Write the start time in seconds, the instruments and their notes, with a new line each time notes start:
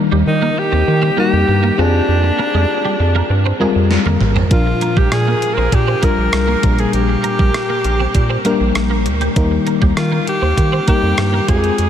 Already playing: fm electric piano D#3 G3 A#3 D#4 A#4
0.12 analog synth bass D#2, clean electric guitar G3
0.27 analog synth bass D#3, alto saxophone D#4
0.42 clean electric guitar A#3
0.57 alto saxophone G4, muted clean electric guitar stroke
0.72 analog synth bass D#2, clean electric guitar C4
0.88 analog synth bass D#3, muted clean electric guitar stroke
1.02 clean electric guitar C4
1.17 fm electric piano G3 A#3 D#4 A#4, clean electric guitar A#3, alto saxophone G4
1.33 analog synth bass F2
1.48 analog synth bass G2, muted clean electric guitar stroke
1.63 clean electric guitar A#3
1.78 analog synth bass F2, fm electric piano C4 F4 G4 G#4, clean electric guitar C4, alto saxophone D4
2.09 analog synth bass F2
2.23 muted clean electric guitar stroke
2.39 clean electric guitar A#3
2.54 analog synth bass F2, clean electric guitar G#3
2.85 clean electric guitar G3
3.00 analog synth bass F2, muted clean electric guitar stroke
3.15 clean electric guitar A#3
3.30 analog synth bass G2, muted clean electric guitar stroke
3.46 clean electric guitar C4
3.60 analog synth bass F2, fm electric piano G3 C4 F4 A#4, clean electric guitar G#3
3.76 analog synth bass F2
3.91 snare
4.06 analog synth bass F2, clean electric guitar A#3, high tom
4.21 analog synth bass A1, muted clean electric guitar stroke, mid tom
4.36 clean electric guitar C4, floor tom
4.51 analog synth bass A#1, fm electric piano A#2 F3 D4 F4 A#4, alto saxophone F4, kick, closed hi-hat
4.66 muted clean electric guitar stroke
4.81 clean electric guitar A#3, closed hi-hat
4.97 analog synth bass A#1, clean electric guitar G3, alto saxophone G4, kick
5.12 analog synth bass A#2, alto saxophone G#4, cross-stick, closed hi-hat
5.27 clean electric guitar A#3
5.42 muted clean electric guitar stroke, closed hi-hat
5.54 analog synth bass A#1, clean electric guitar C4, alto saxophone A#4
5.72 analog synth bass A#2, alto saxophone G4, muted clean electric guitar stroke, kick, closed hi-hat
5.88 clean electric guitar C4
6.02 fm electric piano G3 D4 F4 A#4, clean electric guitar A#3, alto saxophone A#4, kick, closed hi-hat
6.18 analog synth bass A#1
6.32 analog synth bass C2, muted clean electric guitar stroke, cross-stick, closed hi-hat
6.47 clean electric guitar A#3
6.63 analog synth bass A#1, fm electric piano A#2 G3 A#3 D4 A#4, clean electric guitar C4, kick, closed hi-hat
6.79 alto saxophone G#4, closed hi-hat
6.93 analog synth bass A#1, alto saxophone G4, closed hi-hat
7.09 muted clean electric guitar stroke
7.23 clean electric guitar A#3, closed hi-hat
7.39 analog synth bass A#1, clean electric guitar G3, kick
7.54 cross-stick, closed hi-hat
7.69 clean electric guitar A#3
7.84 analog synth bass A#1, muted clean electric guitar stroke, closed hi-hat
8.00 clean electric guitar C4
8.14 analog synth bass A#2, muted clean electric guitar stroke, kick, closed hi-hat
8.30 clean electric guitar C4
8.45 fm electric piano G3 A#3 D4 A#4, clean electric guitar A#3, closed hi-hat
8.60 analog synth bass A#1
8.75 analog synth bass A#1, cross-stick, closed hi-hat
8.90 clean electric guitar A#3
9.06 analog synth bass D2, muted clean electric guitar stroke, closed hi-hat
9.21 clean electric guitar G3, closed hi-hat
9.36 analog synth bass D#2, fm electric piano D#3 G3 A#3 D#4 A#4, kick, closed hi-hat
9.51 muted clean electric guitar stroke
9.67 clean electric guitar A#3, closed hi-hat
9.82 analog synth bass D#2, clean electric guitar G3, kick
9.97 analog synth bass D#3, alto saxophone F4, cross-stick, closed hi-hat
10.12 clean electric guitar A#3
10.27 alto saxophone G4, muted clean electric guitar stroke, closed hi-hat
10.42 analog synth bass D#2, clean electric guitar C4
10.57 analog synth bass D#3, muted clean electric guitar stroke, kick, closed hi-hat
10.72 clean electric guitar C4
10.87 fm electric piano G3 A#3 D#4 A#4, clean electric guitar A#3, alto saxophone G4, kick, closed hi-hat
11.02 analog synth bass F2
11.18 analog synth bass G2, muted clean electric guitar stroke, cross-stick, closed hi-hat
11.33 clean electric guitar A#3
11.48 analog synth bass F2, fm electric piano G#3 C4 F4 G4, clean electric guitar C4, alto saxophone G#4, kick, closed hi-hat
11.56 fm electric piano G#4
11.64 closed hi-hat
11.78 analog synth bass F2, closed hi-hat